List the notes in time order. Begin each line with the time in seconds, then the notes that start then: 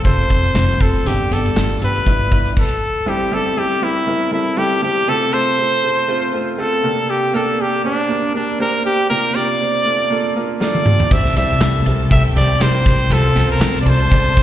Already playing: C3 C4 F4 G4 A4 C5
0.04 F1 C4 F4 A4 C5, kick, closed hi-hat
0.30 F1 C4 F4 A4, kick, closed hi-hat
0.44 closed hi-hat
0.55 F1 C4 F4 C5, snare, clap
0.80 F1 C4 F4 A4, kick, closed hi-hat
0.95 closed hi-hat
1.05 G1 G2 D3 B3 D4 G4, closed hi-hat
1.30 G1 B3 D4 G4 A4, closed hi-hat
1.46 closed hi-hat
1.55 G1 B3 D4 F4, snare, clap
1.81 G1 B3 D4 G4 B4, closed hi-hat
1.96 closed hi-hat
2.06 G1 B3 D4 E4, kick, closed hi-hat
2.31 G1 B3 D4 E4, kick, closed hi-hat
2.45 closed hi-hat
2.57 A4, kick, crash
3.06 G2 G3 C4 E4 G4
3.32 G3 C4 E4 G4 A4
3.57 G3 C4 E4 G4
3.82 G3 C4 E4 A#4
4.07 G3 C4 E4 A#4
4.31 G3 C4 E4 A4
4.57 G3 C4 E4 G4 A4
4.83 G3 C4 E4 G4
5.08 C3 A3 C4 F4 A4
5.33 A3 C4 F4 A4 C5
5.58 A3 C4 F4 A4
5.83 A3 C4 F4 A4
6.08 A3 C4 F4 C5
6.33 A3 C4 F4 C5
6.58 A3 C4 F4 A4
6.83 C3 A#3 D4 G4 A#4
7.10 G4
7.33 A#3 D4 G4 A4 A#4
7.59 A#3 D4 G4 A#4
7.84 A#3 D4 G4 C5
8.09 A#3 D4 G4 A#4
8.35 A#3 D4 G4 A#4
8.59 A#3 D4 G4 A#4 C5
8.85 A#3 D4 G4 C5
9.10 C3 A#3 D4 F4 A#4
9.34 A#3 D4 F4 G4 D5
9.60 A#3 D4 F4 C5
9.85 A#3 D4 F4 A4
10.10 A#3 D4 F4 A4
10.35 A#3 D4 F4 A#4
10.60 A#3 D4 F4 A4 D5, snare
10.75 high tom
10.86 A#3 D4 F4 G4, mid tom
11.00 floor tom
11.10 C2 G2 C4 E4 G4 A4 C5 E5 A5, kick, ride
11.25 snare
11.36 C2 C4 E4 G4 D5 E5, ride
11.61 C2 C4 E4 G4 D5, snare, clap, ride
11.86 C2 C4 E4 G4 A#4, ride
12.10 C2 C4 E4 G4 A4 E5 G5, kick, ride
12.36 C2 C4 E4 G4 C5 D5, ride
12.60 C2 C4 E4 G4 A#4 C5, snare, clap, ride
12.86 C2 C4 E4 G4 C5, kick, ride
13.10 C2 C3 C4 F4 A4 C5 A5, ride
13.36 C2 C4 F4 A4 C5, ride
13.51 A#4
13.60 C2 C4 F4 A4 C5, snare, clap, ride
13.82 D5
13.86 C2 C4 F4 A4 C5 D5, ride
14.11 C2 C4 F4 A4 D5, kick, ride
14.36 C2 C4 F4 A4 C5, kick, ride